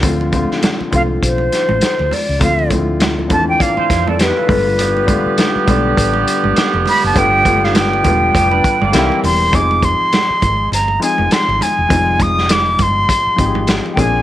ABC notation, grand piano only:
X:1
M:4/4
L:1/8
Q:"Swing 16ths" 1/4=101
K:Ddor
V:1 name="Grand piano"
[D,F,A,CF] [D,F,A,CF]2 [D,F,A,CF]4 z | [D,F,A,CF] [D,F,A,CEF]2 [D,E,F,A,CD]4 [D,G,A,B,F]- | [D,G,A,B,F] [D,G,A,B,F]2 [D,G,A,B,D]4 z | [D,G,A,B,F] [D,G,A,B,F]2 [D,G,A,B,F]3 [D,E,G,_B,CG]2 |
[K:Fdor] [F,A,CEA]4 z [F,A,CEA]3 | [F,G,A,CEF]4 z [F,A,CEGA]2 [F,B,CDA] |]